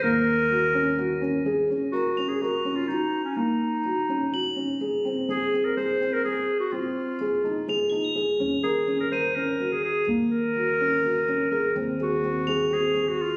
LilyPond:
<<
  \new Staff \with { instrumentName = "Crotales" } { \time 7/8 \key ees \dorian \tempo 4 = 125 r2. r8 | r4 f''''2~ f''''16 r16 | r2 ges''''4.~ | ges''''8 r2. |
r2 f''''16 aes''''16 bes''''4~ | bes''''4 r8 ees''''2~ | ees''''16 r2. r16 | r4. f''''2 | }
  \new Staff \with { instrumentName = "Clarinet" } { \time 7/8 \key ees \dorian bes'2. r8 | r8 ges'8. aes'16 ges'8. f'16 ees'8. des'16 | ees'2. r8 | r8 aes'8. bes'16 c''8. bes'16 aes'8. ges'16 |
f'2. r8 | r8 aes'8. bes'16 c''8 bes'8. aes'16 aes'8 | r8 bes'2~ bes'8 bes'8 | r8 ges'4. aes'8. ges'16 f'8 | }
  \new Staff \with { instrumentName = "Felt piano" } { \time 7/8 \key ees \dorian bes4 ges'8 des'8 ges'8 des'8 aes'8 | des'8 bes'8 des'8 bes'8 des'8 ges'4 | bes4 ges'8 des'8 ges'8 des'8 aes'8 | c'8 aes'8 c'8 aes'8 c'8 aes'4 |
c'4 aes'8 ees'8 aes'8 ees'8 aes'8 | des'8 bes'8 des'8 bes'8 des'8 ges'4 | bes4 ges'8 des'8 ges'8 des'8 aes'8 | c'8 aes'8 c'8 aes'8 c'8 aes'4 | }
  \new Staff \with { instrumentName = "Upright bass" } { \clef bass \time 7/8 \key ees \dorian ees,2.~ ees,8 | r2. r8 | r2. r8 | r2. r8 |
r2. r8 | ees,2.~ ees,8 | ees,2.~ ees,8 | ees,2.~ ees,8 | }
>>